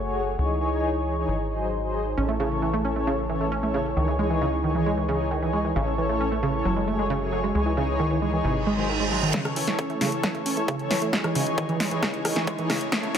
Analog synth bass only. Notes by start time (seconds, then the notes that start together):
Already playing: F#1
0.38 C#2
1.28 G#1
2.18 A1
3.97 C#2
5.76 A1
6.65 F#1
7.55 C#2
8.44 G#1